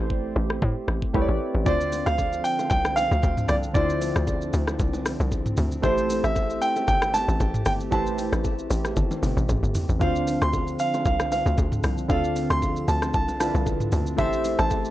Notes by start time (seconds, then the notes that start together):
Already playing: A3 C4 E4 G4 A4 C5
0.00 A1
0.10 kick
0.36 A1
0.50 cross-stick
0.62 A2, kick
0.88 A1, cross-stick
1.02 kick
1.13 C2 A3 E4 G4 B4 C#5, kick
1.21 D5
1.29 A1
1.55 A1
1.65 D2 D3 F3 C4 D4 F4 C5 D5, kick, low conga, shaker
1.81 shaker
1.92 open hi-hat, low bongo, shaker
2.06 D2 F5, cross-stick, shaker
2.18 kick, high bongo, shaker
2.33 shaker
2.44 G5, open hi-hat, shaker
2.59 high bongo, low bongo, shaker
2.70 C2 G5, kick, low conga, shaker
2.85 cross-stick, low bongo, shaker
2.96 F5, open hi-hat, low bongo, shaker
3.11 D2, shaker
3.23 D2, kick, high bongo, shaker
3.37 mid tom, shaker
3.48 C2 D5, cross-stick, open hi-hat, low conga, shaker
3.63 shaker
3.73 D2 D3 D4 E4 F4 C5 D5, kick, low conga, shaker
3.90 shaker
4.01 open hi-hat, low bongo, shaker
4.16 D2, cross-stick, shaker
4.27 kick, high bongo, shaker
4.42 shaker
4.53 D2, open hi-hat, shaker
4.67 cross-stick, high bongo, low bongo, shaker
4.79 C2, kick, low conga, shaker
4.93 low bongo, shaker
5.06 cross-stick, open hi-hat, low bongo, shaker
5.20 C2, shaker
5.31 kick, high bongo, shaker
5.46 mid tom, shaker
5.57 D2, open hi-hat, low conga, shaker
5.72 shaker
5.82 A1 A3 E4 G4 A4 C5, kick, low conga, shaker
5.98 shaker
6.10 open hi-hat, low bongo, shaker
6.24 A1 E5, cross-stick, shaker
6.36 kick, high bongo, shaker
6.50 shaker
6.62 G5, open hi-hat, shaker
6.76 high bongo, low bongo, shaker
6.88 G1 G5, kick, low conga, shaker
7.02 cross-stick, low bongo, shaker
7.14 A5, open hi-hat, low bongo, shaker
7.28 A1, shaker
7.40 A1, kick, high bongo, shaker
7.54 mid tom, shaker
7.66 G1 G5, cross-stick, open hi-hat, low conga, shaker
7.80 shaker
7.91 A1 A3 E4 G4 B4 C5 A5, kick, low conga, shaker
8.07 shaker
8.18 open hi-hat, low bongo, shaker
8.33 A1, cross-stick, shaker
8.44 kick, high bongo, shaker
8.59 shaker
8.71 A1, open hi-hat, shaker
8.85 cross-stick, high bongo, low bongo, shaker
8.96 G1, kick, high tom, low conga, shaker
9.11 high tom, low bongo, shaker
9.23 G1, open hi-hat, mid tom, low bongo, shaker
9.37 A1, mid tom, shaker
9.49 A1, kick, mid tom, high bongo, shaker
9.63 G1, mid tom, shaker
9.75 floor tom, open hi-hat, low conga, shaker
9.89 A1, floor tom, shaker
9.99 D2 D3 F3 C4 D4 F4 C5 F5, kick, low conga, shaker
10.16 shaker
10.27 open hi-hat, low bongo, shaker
10.42 D2 C6, cross-stick, shaker
10.53 kick, high bongo, shaker
10.67 shaker
10.79 F5, open hi-hat, shaker
10.94 high bongo, low bongo, shaker
11.05 C2 F5, kick, low conga, shaker
11.20 cross-stick, low bongo, shaker
11.32 F5, open hi-hat, low bongo, shaker
11.46 D2, shaker
11.57 D2, kick, high bongo, shaker
11.72 mid tom, shaker
11.84 C2, cross-stick, open hi-hat, low conga, shaker
11.98 shaker
12.08 D2 D3 C4 D4 F4 A4 F5, kick, low conga, shaker
12.24 shaker
12.36 open hi-hat, low bongo, shaker
12.50 D2 C6, cross-stick, shaker
12.62 kick, high bongo, shaker
12.76 shaker
12.88 D2 A5, open hi-hat, shaker
13.02 cross-stick, high bongo, low bongo, shaker
13.14 C2 A5, kick, low conga, shaker
13.28 low bongo, shaker
13.40 D3 D4 E4 F4 B4 A5, cross-stick, open hi-hat, low bongo, shaker
13.55 C2, shaker
13.66 kick, high bongo, shaker
13.80 mid tom, shaker
13.92 D2, open hi-hat, low conga, shaker
14.06 shaker
14.17 A1 A3 E4 G4 A4 C5 E5, kick, low conga, shaker
14.33 shaker
14.45 open hi-hat, low bongo, shaker
14.59 A1 A5, cross-stick, shaker
14.70 kick, high bongo, shaker
14.85 shaker